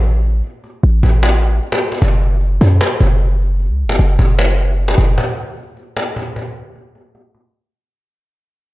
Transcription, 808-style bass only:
0.00 0.42 A1 loud
0.83 1.02 A1 loud
1.03 1.60 A1 loud
2.02 2.59 F#1 loud
2.61 2.80 F#2 loud
3.01 3.71 F#1 loud
3.70 3.86 C#2 loud
3.84 3.99 F#1 medium
3.99 4.18 F#1 loud
4.19 4.95 F#1 loud
4.98 5.17 F#1 loud

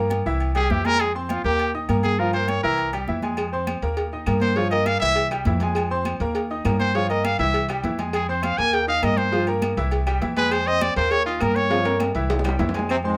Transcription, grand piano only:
0.00 0.20 A#3 medium
0.00 0.21 A#4 medium
0.00 0.21 A#5 medium
0.26 0.50 E3 loud
0.26 0.50 E4 loud
0.26 0.51 E5 loud
0.55 0.68 G3 medium
0.55 0.68 G4 medium
0.55 0.68 G5 medium
0.70 0.83 E3 medium
0.70 0.83 E4 medium
0.70 0.83 E5 medium
0.85 1.09 G#3 medium
0.85 1.10 G#4 medium
0.85 1.10 G#5 medium
1.15 1.39 C4 medium
1.15 1.40 C5 medium
1.15 1.40 C6 medium
1.45 1.69 A#3 medium
1.45 1.69 A#4 medium
1.45 1.69 A#5 medium
1.75 1.87 D#4 medium
1.75 1.87 D#5 medium
1.75 1.87 D#6 medium
1.89 2.14 A#3 medium
1.89 2.14 A#4 medium
1.89 2.14 A#5 medium
2.19 2.31 F3 medium
2.19 2.31 F4 medium
2.19 2.32 F5 medium
2.34 2.58 A#3 medium
2.34 2.59 A#4 medium
2.34 2.59 A#5 medium
2.64 2.88 E3 medium
2.64 2.88 E4 loud
2.64 2.88 E5 loud
2.93 3.05 G3 medium
2.93 3.06 G4 medium
2.93 3.06 G5 medium
3.08 3.20 E3 medium
3.08 3.21 E4 medium
3.08 3.21 E5 medium
3.23 3.47 G#3 medium
3.23 3.47 G#4 medium
3.23 3.47 G#5 medium
3.53 3.77 C4 medium
3.53 3.77 C5 medium
3.53 3.78 C6 medium
3.83 4.07 A#3 medium
3.83 4.07 A#4 medium
3.83 4.07 A#5 medium
4.13 4.25 D#4 medium
4.13 4.25 D#5 medium
4.13 4.25 D#6 medium
4.27 4.51 A#3 medium
4.27 4.52 A#4 medium
4.27 4.52 A#5 medium
4.57 4.69 F3 medium
4.57 4.69 F4 medium
4.57 4.69 F5 medium
4.72 4.96 A#3 medium
4.72 4.96 A#4 medium
4.72 4.97 A#5 medium
5.02 5.26 E3 medium
5.02 5.26 E4 medium
5.02 5.26 E5 medium
5.31 5.43 G3 medium
5.31 5.43 G4 medium
5.31 5.44 G5 medium
5.46 5.58 E3 medium
5.46 5.59 E4 medium
5.46 5.59 E5 medium
5.62 5.86 G#3 medium
5.62 5.86 G#4 medium
5.62 5.86 G#5 medium
5.91 6.15 C4 medium
5.91 6.15 C5 medium
5.91 6.15 C6 medium
6.21 6.45 A#3 medium
6.21 6.45 A#4 medium
6.21 6.45 A#5 medium
6.51 6.63 D#4 medium
6.51 6.63 D#5 medium
6.51 6.63 D#6 medium
6.65 6.89 A#3 medium
6.65 6.89 A#4 medium
6.65 6.90 A#5 medium
6.95 7.07 F3 medium
6.95 7.07 F4 medium
6.95 7.07 F5 medium
7.10 7.34 A#3 medium
7.10 7.34 A#4 medium
7.10 7.34 A#5 medium
7.39 7.64 E3 medium
7.39 7.64 E4 medium
7.39 7.64 E5 medium
7.69 7.81 G3 medium
7.69 7.81 G4 medium
7.69 7.82 G5 medium
7.84 7.96 E3 medium
7.84 7.96 E4 medium
7.84 7.97 E5 medium
7.99 8.23 G#3 medium
7.99 8.23 G#4 medium
7.99 8.24 G#5 medium
8.29 8.53 C4 medium
8.29 8.53 C5 medium
8.29 8.53 C6 medium
8.58 8.83 A#3 medium
8.58 8.83 A#4 medium
8.58 8.83 A#5 medium
8.87 9.00 D#4 medium
8.87 9.00 D#5 medium
8.87 9.00 D#6 medium
9.02 9.27 A#3 medium
9.02 9.27 A#4 medium
9.02 9.27 A#5 medium
9.32 9.44 F3 medium
9.32 9.45 F4 medium
9.32 9.45 F5 medium
9.48 9.72 A#3 medium
9.48 9.72 A#4 medium
9.48 9.72 A#5 medium
9.77 10.02 E3 medium
9.77 10.02 E4 loud
9.77 10.02 E5 loud
10.07 10.19 G3 medium
10.07 10.19 G4 medium
10.07 10.19 G5 medium
10.21 10.34 E3 medium
10.21 10.34 E4 medium
10.21 10.34 E5 medium
10.37 10.61 G#3 medium
10.37 10.61 G#4 medium
10.37 10.61 G#5 medium
10.67 10.91 C4 medium
10.67 10.91 C5 medium
10.67 10.91 C6 medium
10.96 11.20 A#3 medium
10.96 11.21 A#4 medium
10.96 11.21 A#5 medium
11.26 11.38 D#4 medium
11.26 11.38 D#5 medium
11.26 11.38 D#6 medium
11.41 11.65 A#3 medium
11.41 11.65 A#4 medium
11.41 11.65 A#5 medium
11.70 11.82 F3 medium
11.70 11.82 F4 medium
11.70 11.83 F5 medium
11.85 12.09 A#3 medium
11.85 12.10 A#4 medium
11.85 12.10 A#5 medium
12.15 12.39 E3 loud
12.15 12.40 E4 loud
12.15 12.40 E5 medium
12.45 12.57 G3 medium
12.45 12.57 G4 medium
12.45 12.57 G5 medium
12.60 12.72 E3 medium
12.60 12.72 E4 medium
12.60 12.72 E5 medium
12.75 12.87 G#3 medium
12.75 12.87 G#4 medium
12.75 12.87 G#5 medium
13.04 13.17 C4 medium
13.04 13.17 C5 medium
13.04 13.17 C6 medium

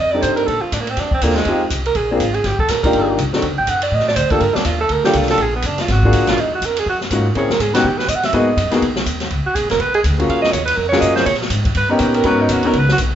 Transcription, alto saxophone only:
0.00 0.13 D#5 loud
0.11 0.24 D5 loud
0.22 0.35 C5 loud
0.36 0.48 A#4 loud
0.47 0.63 A4 medium
0.61 0.75 F4 medium
0.73 0.82 D4 medium
0.81 0.91 A#3 medium
0.90 1.01 C4 medium
1.00 1.14 D4 medium
1.14 1.24 C4 medium
1.23 1.37 A#3 medium
1.36 1.61 G#3 medium
1.86 1.98 A#4 loud
1.96 2.11 G#4 medium
2.13 2.24 C4 medium
2.22 2.36 F4 medium
2.34 2.48 G#4 medium
2.46 2.59 G4 medium
2.60 2.72 A4 loud
2.70 2.83 A#4 medium
2.83 3.16 A#4 medium
3.58 3.71 G5 loud
3.70 3.82 F#5 loud
3.83 3.96 D5 loud
3.94 4.08 D#5 loud
4.08 4.18 D5 loud
4.16 4.33 C5 loud
4.31 4.42 A4 loud
4.41 4.56 A#4 loud
4.55 4.67 D4 medium
4.65 4.80 F4 medium
4.80 4.94 A4 loud
4.92 5.04 A#4 loud
5.05 5.19 G4 loud
5.17 5.30 F4 medium
5.31 5.43 A4 loud
5.42 5.55 G#4 medium
5.56 5.68 B3 medium
5.66 5.82 D4 medium
5.81 5.93 F4 loud
5.92 6.31 F#4 loud
6.29 6.42 F4 loud
6.40 6.54 D#4 medium
6.55 6.67 F#4 medium
6.65 6.81 A#4 loud
6.79 6.88 G#4 medium
6.89 6.97 F#4 loud
7.37 7.50 C#5 medium
7.51 7.63 A#4 loud
7.61 7.74 G#4 medium
7.75 7.88 F#4 medium
7.86 7.99 G4 medium
7.98 8.10 B4 medium
8.09 8.17 D#5 loud
8.15 8.26 F#5 loud
8.25 8.36 E5 medium
8.34 8.73 D#5 loud
9.46 9.56 F#4 loud
9.55 9.70 G#4 medium
9.71 9.82 A#4 loud
9.81 9.94 B4 loud
9.95 10.01 G#4 loud
10.30 10.41 F5 medium
10.42 10.54 D#5 loud
10.52 10.65 C#5 medium
10.65 10.78 B4 loud
10.77 10.88 A#4 medium
10.89 11.02 C#5 loud
11.00 11.15 D#5 loud
11.16 11.25 C5 medium
11.26 11.35 C#5 loud
11.77 11.90 B4 loud
11.90 12.02 D#4 medium
12.00 12.17 G4 loud
12.15 12.28 A#4 loud
12.27 12.43 B4 loud
12.42 12.54 D#4 medium
12.52 12.69 F#4 loud
12.67 12.79 A#4 loud
12.78 12.91 B4 loud
12.92 12.97 F#4 loud

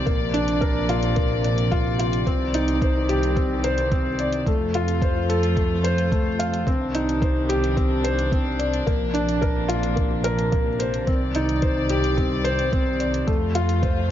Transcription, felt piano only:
0.06 0.33 A#3 medium
0.34 0.50 D4 loud
0.61 0.88 A#4 medium
0.89 1.15 F4 loud
1.16 1.43 A#3 medium
1.45 1.71 D5 medium
1.72 1.87 F4 loud
1.99 2.25 F4 medium
2.27 2.53 C4 medium
2.54 2.70 D#4 loud
2.82 3.08 C5 medium
3.09 3.35 G4 loud
3.37 3.63 C4 medium
3.64 3.90 C5 loud
3.92 4.08 C4 medium
4.19 4.46 D5 medium
4.47 4.73 A3 medium
4.75 4.90 F4 loud
5.02 5.28 C5 medium
5.29 5.56 A4 loud
5.56 5.83 A3 medium
5.84 6.10 C5 loud
6.12 6.28 A3 medium
6.39 6.66 F5 medium
6.67 6.93 C4 medium
6.95 7.10 D#4 loud
7.22 7.48 C5 medium
7.49 7.76 G4 loud
7.77 8.03 C4 medium
8.04 8.31 C5 loud
8.32 8.48 C4 medium
8.59 8.86 D5 medium
8.87 9.13 A#3 medium
9.14 9.30 D4 loud
9.42 9.68 A#4 medium
9.68 9.95 F4 loud
9.96 10.23 A#3 medium
10.24 10.51 A#4 loud
10.52 10.68 A#3 medium
10.79 11.06 C5 medium
11.07 11.33 C4 medium
11.35 11.51 D#4 loud
11.62 11.89 C5 medium
11.90 12.16 G4 loud
12.17 12.44 C4 medium
12.44 12.71 C5 loud
12.72 12.88 C4 medium
13.00 13.26 D5 medium
13.27 13.53 A3 medium
13.55 13.71 F4 loud
13.83 14.09 C5 medium

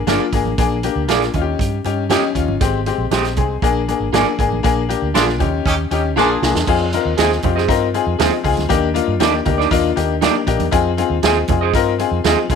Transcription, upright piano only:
0.07 0.24 A#3 loud
0.07 0.24 D4 loud
0.07 0.25 F4 loud
0.33 0.50 A#3 medium
0.33 0.50 D4 medium
0.33 0.50 G#4 medium
0.58 0.75 A#3 medium
0.58 0.75 D4 medium
0.58 0.75 G#4 loud
0.83 1.00 A#3 medium
0.83 1.01 D4 medium
0.83 1.01 G4 loud
1.08 1.25 A#3 medium
1.08 1.26 D4 medium
1.08 1.26 F4 medium
1.34 1.75 C#4 medium
1.34 1.75 D#4 medium
1.34 1.41 F4 medium
1.42 1.78 G4 medium
1.85 2.02 C#4 medium
1.85 2.02 D#4 medium
1.85 2.02 G4 medium
2.10 2.27 C#4 loud
2.10 2.27 D#4 loud
2.10 2.27 G4 loud
2.35 2.52 C#4 medium
2.35 2.52 D#4 medium
2.35 2.53 F4 medium
2.60 2.78 G#3 loud
2.60 2.78 C4 loud
2.60 2.78 G4 loud
2.86 3.03 G#3 medium
2.86 3.04 C4 medium
2.86 3.04 G4 medium
3.11 3.28 G#3 medium
3.11 3.29 C4 medium
3.11 3.29 G4 loud
3.37 3.54 G#3 medium
3.37 3.54 C4 medium
3.37 3.54 G#4 medium
3.62 3.79 A#3 loud
3.62 3.79 D4 loud
3.62 3.80 G#4 loud
3.88 4.05 A#3 medium
3.88 4.05 D4 medium
3.88 4.05 G#4 medium
4.13 4.30 A#3 loud
4.13 4.30 D4 medium
4.13 4.30 G#4 loud
4.39 4.55 A#3 medium
4.39 4.56 D4 medium
4.39 4.56 G#4 loud
4.63 4.80 A#3 loud
4.63 4.81 D4 medium
4.63 4.81 G#4 loud
4.89 5.06 A#3 medium
4.89 5.06 D4 medium
4.89 5.06 G4 loud
5.15 5.31 A#3 medium
5.15 5.32 D4 medium
5.15 5.32 F4 medium
5.39 5.80 C#4 medium
5.39 5.80 D#4 medium
5.39 5.81 G4 medium
5.91 6.08 C#4 medium
5.91 6.08 D#4 medium
5.91 6.08 G4 medium
6.17 6.33 A#3 loud
6.17 6.33 D4 loud
6.17 6.34 G#4 loud
6.42 6.59 A#3 medium
6.42 6.59 D4 medium
6.42 6.59 G#4 loud
6.67 6.84 C4 loud
6.67 6.84 D#4 medium
6.67 6.84 F4 loud
6.67 6.84 G#4 loud
6.93 7.09 C4 medium
6.93 7.10 D#4 medium
6.93 7.10 F4 medium
6.93 7.10 A#4 medium
7.19 7.35 C4 medium
7.19 7.35 D#4 medium
7.19 7.35 F4 medium
7.19 7.35 G#4 loud
7.43 7.60 C4 medium
7.43 7.60 D#4 medium
7.43 7.60 F4 medium
7.43 7.61 G4 medium
7.68 7.85 C4 loud
7.68 7.85 D#4 loud
7.68 7.85 F4 loud
7.68 7.86 A#4 loud
7.94 8.11 C4 medium
7.94 8.11 D#4 medium
7.94 8.11 F4 medium
7.94 8.11 G#4 loud
8.19 8.36 C4 medium
8.19 8.36 D#4 medium
8.19 8.36 F4 medium
8.19 8.36 G#4 medium
8.43 8.61 C4 medium
8.43 8.61 D#4 medium
8.43 8.61 F4 medium
8.43 8.61 G#4 loud
8.69 8.86 A#3 loud
8.69 8.86 D4 loud
8.69 8.87 D#4 medium
8.69 8.86 G4 loud
8.94 9.11 A#3 medium
8.94 9.11 D4 medium
8.94 9.12 D#4 medium
8.94 9.12 F4 loud
9.20 9.37 A#3 loud
9.20 9.37 D4 medium
9.20 9.37 D#4 medium
9.20 9.37 G4 loud
9.45 9.62 A#3 medium
9.45 9.62 D4 medium
9.45 9.63 D#4 medium
9.45 9.63 G4 medium
9.71 9.88 A#3 loud
9.71 9.88 D4 loud
9.71 9.88 D#4 loud
9.71 9.88 F4 loud
9.96 10.13 A#3 medium
9.96 10.13 D4 medium
9.96 10.13 D#4 medium
9.96 10.14 G4 loud
10.21 10.39 A#3 medium
10.21 10.39 D4 medium
10.21 10.39 D#4 medium
10.21 10.39 G4 medium
10.46 10.64 A#3 medium
10.46 10.64 D4 medium
10.46 10.64 D#4 medium
10.46 10.64 G4 loud
10.71 10.89 C4 loud
10.71 10.89 D#4 loud
10.71 10.89 F4 loud
10.71 10.89 G#4 loud
10.97 11.15 C4 loud
10.97 11.15 D#4 medium
10.97 11.15 F4 medium
10.97 11.15 G#4 medium
11.23 11.40 C4 medium
11.23 11.40 D#4 medium
11.23 11.41 F4 medium
11.23 11.41 G#4 loud
11.48 11.66 C4 medium
11.48 11.66 D#4 medium
11.48 11.66 F4 medium
11.48 11.66 G#4 medium
11.74 11.91 C4 loud
11.74 11.91 D#4 loud
11.74 11.91 F4 loud
11.74 11.92 A#4 loud
11.99 12.16 C4 medium
11.99 12.16 D#4 medium
11.99 12.17 F4 medium
11.99 12.17 G#4 medium
12.25 12.42 C4 medium
12.25 12.42 D#4 medium
12.25 12.42 F4 medium
12.25 12.42 G#4 loud
12.50 12.55 C4 medium
12.50 12.55 D#4 medium
12.50 12.55 F4 medium
12.50 12.55 G#4 loud

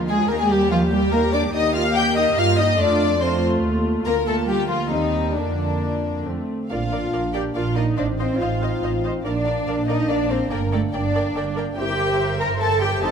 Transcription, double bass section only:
0.00 0.30 D2 medium
0.30 1.51 D#2 medium
1.54 2.33 D#2 medium
2.37 2.79 G2 medium
2.78 3.63 F2 medium
3.63 4.05 D#2 medium
4.06 4.90 D2 medium
4.91 5.36 D#2 soft
5.36 6.24 F2 soft
6.25 6.33 F2 soft
6.70 7.08 A#1 soft
7.13 7.50 A#1 soft
7.55 7.92 A#1 soft
7.98 8.36 A1 soft
8.41 8.78 A1 soft
8.83 9.20 A1 soft
9.25 9.62 A#1 soft
9.67 10.04 A#1 soft
10.09 10.46 A#1 medium
10.51 10.89 G1 medium
10.94 11.31 G1 medium
11.36 11.72 G1 medium
11.78 12.99 G1 medium
13.03 13.11 F1 medium

